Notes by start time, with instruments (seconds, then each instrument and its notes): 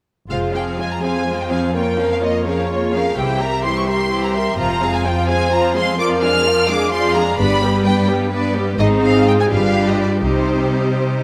0.30 double bass section F1, cello section F2, viola section G#3 F4, violin section F4 C5 F5, french horn section G#4
0.54 viola section F3 C4, violin section G#4 F5 G5
0.78 viola section G#3 F4, violin section F4 C5 G#5
0.92 violin section A#5
1.02 viola section F3 C4, violin section G#4 F5 G#5, french horn section C5
1.26 viola section G#3 F4, violin section F4 C5
1.40 violin section G5
1.50 viola section F3 C4, violin section G#4 F5 G#5
1.74 viola section A#3 F4, french horn section A#4, violin section C#5 G5
1.97 viola section F3 C#4, violin section A#4 F5
2.11 violin section F5
2.22 viola section A#3 F4, violin section C#5 D#5
2.44 viola section F3 C#4, french horn section G#4, violin section A#4 C#5 F5
2.69 viola section A#3 F4, violin section C#5
2.93 viola section F3 C#4, violin section A#4 F5
3.16 double bass section C2, cello section C2, viola section E3 E4, french horn section G4, violin section G4 C5 G5
3.40 viola section G3 G4, violin section A#4 E5 A#5
3.63 viola section E3 E4, violin section G4 C5 C6
3.76 violin section C#6
3.87 viola section G3 G4, violin section A#4 E5 C6
4.11 viola section E3 E4, violin section G4 C5
4.24 violin section A#5
4.34 viola section G3 G4, violin section A#4 E5 C6
4.57 double bass section F1, cello section F2, viola section F3 F4, french horn section F4, violin section F4 C5 A#5
4.81 viola section G#3 C4, violin section G#4 F5
4.95 violin section G#5
5.04 viola section F3 F4, violin section F4 C5 G5
5.27 viola section G#3 C4, violin section G#4 F5 G#5, french horn section C5
5.51 viola section F3 F4, violin section F4 C5 A#5
5.75 viola section G#3 C4, violin section G#4 F5 C6
5.98 viola section F3 F4, violin section F4 D5 D6, french horn section A#4
6.21 viola section G#3 D4, violin section G#4 F5 F6
6.45 viola section F3 F4, violin section F4 D5
6.68 viola section G#3 D4, french horn section G#4, violin section G#4 F5 D6
6.91 viola section F3 F4, violin section F4 D5 C6
7.14 viola section G#3 D4, violin section G#4 F5 A#5
7.37 double bass section G1, cello section G2, viola section B3 D4, french horn section G4, violin section B4 D5 B5
7.61 viola section G3 B3, violin section G4 B4
7.84 viola section B3 D4, violin section B4 D5 G5
8.08 viola section G3 B3, violin section G4 B4, french horn section B4
8.32 viola section B3 D4, violin section B4 D5
8.55 viola section G3 B3, violin section G4 B4
8.79 double bass section G#1, cello section G#2, viola section C4 D#4, violin section D#4 C5 D#5, french horn section G#4
9.04 violin section F5
9.15 violin section F4
9.27 violin section G5
9.40 violin section G#5
9.51 double bass section G1, cello section G2, viola section G3 D4, french horn section F4, violin section G4 B4 F5
9.89 violin section D#5
10.01 violin section D5
10.24 double bass section C2, cello section C3, viola section G3 D#4, french horn section D#4, violin section G4 C5